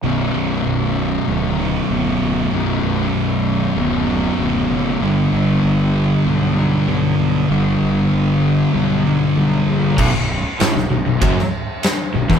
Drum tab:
CC |----------------|----------------|----------------|----------------|
RD |----------------|----------------|----------------|----------------|
SD |----------------|----------------|----------------|----------------|
BD |----------------|----------------|----------------|----------------|

CC |x---------------|
RD |----b---b---b---|
SD |----oo---o--o--o|
BD |o-------o------o|